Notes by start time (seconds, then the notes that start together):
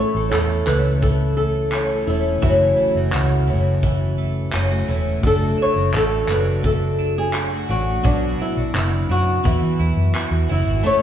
Already playing: A2 E3 A3 C#4 E4 A4 C#5
0.00 C#5
0.14 A1 A3 C#4 E4 A4
0.31 E2 E3 A4, clap
0.67 C#2 A3 C#4 E4 A4 B4, clap
1.02 E3 A4, kick
1.37 A3 A4
1.72 A3 C#4 E4, clap
1.76 A4
1.91 A3 C#4 E4 A4
2.07 E1 A3 C#4 E4 A4
2.40 F#1 F#2 C#3 E3 A3 E4 F#4, kick
2.44 A3 C#4 F#4 E5
2.77 A3
2.95 F#1 E3 A3 C#4 F#4
3.12 C#2 E3 F#4, clap
3.48 F#1 E3 A3 C#4 F#4
3.83 E3, kick
4.18 A3
4.52 F#1 E3 A3 C#4 F#4, clap
4.70 E3 A3 C#4 F#4
4.88 E1 E3 A3 C#4 F#4
5.22 F#1 F#3 A3 D4 F#4, kick
5.26 D4 A4
5.58 D4
5.62 C#5
5.76 F#1 A3 D4 F#4
5.93 A1 A3, clap
5.97 A4
6.28 F#1 F#3 A3 D4 F#4 B4, clap
6.63 A3 A4, kick
6.99 D4
7.18 G#4
7.33 F#3 A3 D4 F#4, clap
7.52 A3 D4 F#4
7.69 A1 F#3 A3 D4 F#4
8.02 B1 B2 F#3 B3 D4 F#4, kick
8.07 D5
8.39 D4 E4
8.57 B1 B3 D4 F#4
8.74 F#1 B3 E4, clap
9.09 F#2 F#3 B3 D4 F#4
9.43 E2 E3 B3 E4 F#4, kick
9.47 E5
9.62 E3
9.79 E2 E4
9.96 F#2
10.14 E3 B3 E4 F#4, clap
10.31 E2 B3 E4 F#4
10.48 F#1 E3 B3 E4 F#4
10.67 G#1
10.83 A2 E3 A3 C#4 E4 A4 C#5